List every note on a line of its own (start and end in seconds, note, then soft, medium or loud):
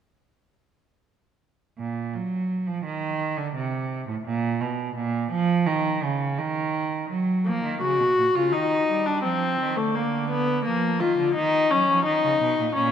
1.78 2.15 A#2 medium
2.14 2.68 F#3 medium
2.67 2.84 F3 medium
2.85 3.38 D#3 medium
3.37 3.54 D3 medium
3.54 4.06 C3 medium
4.07 4.15 A2 medium
4.25 4.62 A#2 loud
4.60 4.95 B2 medium
4.96 5.31 A#2 medium
5.31 5.69 F3 loud
5.67 6.04 D#3 loud
6.03 6.40 C#3 medium
6.38 7.09 D#3 medium
7.10 7.48 F#3 medium
7.46 7.63 F3 medium
7.46 7.79 A#3 medium
7.64 7.81 D#3 medium
7.82 8.01 C#3 medium
7.82 8.37 F#4 medium
8.00 8.17 B2 medium
8.18 8.25 A#2 medium
8.35 8.54 C#3 medium
8.35 8.54 F4 medium
8.53 8.88 D#3 medium
8.53 9.07 D#4 medium
8.89 9.26 G3 medium
9.06 9.23 D4 medium
9.24 9.59 F3 medium
9.24 9.79 C4 medium
9.60 9.79 D#3 medium
9.77 10.65 D3 medium
9.77 9.96 A3 medium
9.95 10.30 A#3 medium
10.30 10.64 B3 medium
10.65 11.03 F3 medium
10.65 11.02 A#3 medium
11.00 11.18 D#3 medium
11.00 11.34 F4 medium
11.18 11.35 D3 medium
11.35 11.71 D#3 medium
11.35 11.72 D#4 medium
11.71 11.79 F#3 medium
11.71 12.05 C#4 medium
11.89 12.06 F3 medium
12.05 12.24 D#3 medium
12.05 12.75 D#4 medium
12.24 12.31 C#3 medium
12.42 12.59 B2 medium
12.60 12.66 A#2 medium
12.75 12.92 A#2 medium
12.75 12.92 C#4 medium